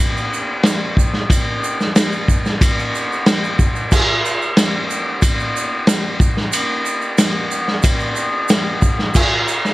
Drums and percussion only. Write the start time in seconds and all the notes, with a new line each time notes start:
0.17 shaker
0.34 shaker
0.63 snare, ride bell, shaker
0.97 kick, shaker
1.14 snare
1.30 kick, ride bell, shaker
1.64 shaker
1.80 snare, shaker
1.96 snare, ride bell, shaker
2.12 shaker
2.28 kick, shaker
2.45 snare, shaker
2.61 kick, ride bell, shaker
2.79 shaker
2.95 shaker
3.12 shaker
3.26 snare, ride bell, shaker
3.44 shaker
3.59 kick, shaker
3.76 shaker
3.92 kick, crash, shaker
4.26 shaker
4.42 shaker
4.57 snare, ride bell, shaker
4.91 shaker
5.22 kick, ride bell, shaker
5.40 shaker
5.57 shaker
5.87 snare, ride bell, shaker
6.20 kick, shaker
6.37 snare
6.53 ride bell, shaker
6.86 shaker
7.02 shaker
7.18 snare, ride bell, shaker
7.51 shaker
7.68 snare
7.83 kick, ride bell, shaker
8.00 shaker
8.16 shaker
8.49 snare, ride bell, shaker
8.82 kick, shaker
8.99 snare
9.14 kick, crash, shaker
9.48 shaker
9.65 snare, shaker